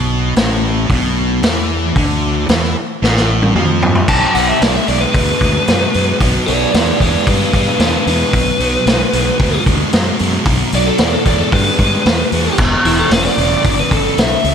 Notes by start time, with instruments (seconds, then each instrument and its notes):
Already playing: fingered electric bass B1, distorted electric guitar B2
0.36 fingered electric bass A1, distorted electric guitar A2, snare, open hi-hat
0.90 fingered electric bass B1, distorted electric guitar B2, kick, open hi-hat
1.43 fingered electric bass E2, distorted electric guitar E3, snare, open hi-hat
1.96 fingered electric bass D2, distorted electric guitar D3, kick, open hi-hat
2.49 fingered electric bass E2, distorted electric guitar E3, snare, open hi-hat
2.64 snare
3.02 fingered electric bass A1, distorted electric guitar A2, snare
3.17 snare
3.42 high tom
3.55 fingered electric bass F2, distorted electric guitar F3, mid tom
3.82 floor tom
3.95 floor tom
4.08 fingered electric bass B1, distorted electric guitar B2 F#3, lead electric guitar A5, kick, crash
4.35 fingered electric bass B1, distorted electric guitar B2 F#3, lead electric guitar F#5, open hi-hat
4.49 lead electric guitar E5
4.61 fingered electric bass B1, distorted electric guitar B2 G#3, lead electric guitar D5, snare, open hi-hat
4.75 lead electric guitar E5
4.88 fingered electric bass B1, distorted electric guitar B2 G#3, lead electric guitar D5, open hi-hat
5.01 lead electric guitar B4
5.12 fingered electric bass D2, distorted electric guitar B2 G#3, lead electric guitar B4, kick, open hi-hat
5.41 fingered electric bass D2, distorted electric guitar B2 G#3, kick, open hi-hat
5.68 fingered electric bass F#2, distorted electric guitar B2 G#3, snare, open hi-hat
5.94 fingered electric bass F#2, distorted electric guitar B2 G#3, open hi-hat
6.20 fingered electric bass B1, distorted electric guitar B2 F#3, kick, open hi-hat
6.47 fingered electric bass B1, distorted electric guitar B2 F#3, lead electric guitar B4 D5, open hi-hat
6.74 fingered electric bass E2, distorted electric guitar B2 G#3, lead electric guitar B4 D5, snare, open hi-hat
7.00 fingered electric bass E2, distorted electric guitar B2 G#3, lead electric guitar B4 D5, kick, open hi-hat
7.27 fingered electric bass G2, distorted electric guitar B2 G#3, lead electric guitar D4 B4, kick, open hi-hat
7.53 fingered electric bass G2, distorted electric guitar B2 G#3, lead electric guitar D4 B4, kick, open hi-hat
7.79 fingered electric bass E2, distorted electric guitar B2 G#3, lead electric guitar D4 B4, snare, open hi-hat
8.06 fingered electric bass E2, distorted electric guitar B2 G#3, lead electric guitar B4, open hi-hat
8.33 fingered electric bass B1, distorted electric guitar B2 F#3, kick, open hi-hat
8.60 fingered electric bass B1, distorted electric guitar B2 F#3, open hi-hat
8.86 fingered electric bass B1, distorted electric guitar B2 G#3, snare, open hi-hat
9.12 fingered electric bass B1, distorted electric guitar B2 G#3, open hi-hat
9.39 fingered electric bass D2, distorted electric guitar B2 G#3, kick, open hi-hat
9.66 fingered electric bass D2, distorted electric guitar B2 G#3, kick, open hi-hat
9.93 fingered electric bass F#2, distorted electric guitar B2 G#3, snare, open hi-hat
10.19 fingered electric bass F#2, distorted electric guitar B2 G#3, open hi-hat
10.45 fingered electric bass B1, distorted electric guitar B2 F#3, kick, open hi-hat
10.72 fingered electric bass B1, distorted electric guitar B2 F#3, lead electric guitar D5, open hi-hat
10.86 lead electric guitar A4
10.98 fingered electric bass E2, distorted electric guitar B2 G#3, lead electric guitar D5, snare, open hi-hat
11.13 lead electric guitar A4
11.25 fingered electric bass E2, distorted electric guitar B2 G#3, lead electric guitar D5, kick, open hi-hat
11.40 lead electric guitar A4
11.52 fingered electric bass G2, distorted electric guitar B2 G#3, lead electric guitar B4, kick, open hi-hat
11.79 fingered electric bass G2, distorted electric guitar B2 G#3, kick, open hi-hat
12.05 fingered electric bass E2, distorted electric guitar B2 G#3, snare, open hi-hat
12.32 fingered electric bass E2, distorted electric guitar B2 G#3, open hi-hat
12.58 fingered electric bass E1, distorted electric guitar E2 B2, kick, crash
12.85 fingered electric bass E1, distorted electric guitar E2 B2, lead electric guitar E4, open hi-hat
12.99 lead electric guitar A4
13.11 fingered electric bass E1, distorted electric guitar E2 C#3, lead electric guitar B4, snare, open hi-hat
13.26 lead electric guitar D5, snare
13.37 fingered electric bass E1, distorted electric guitar E2 C#3, open hi-hat
13.64 fingered electric bass G1, distorted electric guitar E2 C#3, kick, open hi-hat
13.80 lead electric guitar B4
13.90 fingered electric bass G1, distorted electric guitar E2 C#3, lead electric guitar A4, kick, open hi-hat
14.17 fingered electric bass B1, distorted electric guitar E2 C#3, lead electric guitar E5, snare, open hi-hat
14.43 fingered electric bass C#2, distorted electric guitar E2 C#3, open hi-hat